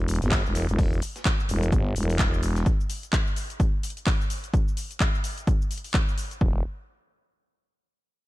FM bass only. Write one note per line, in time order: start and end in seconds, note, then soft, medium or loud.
0.00 0.20 E1 loud
0.22 0.43 G1 loud
0.45 0.67 E1 medium
0.69 1.00 E1 loud
1.49 1.71 E1 medium
1.72 1.94 G1 loud
1.96 2.18 E1 medium
2.19 2.64 E1 medium
6.41 6.63 E1 loud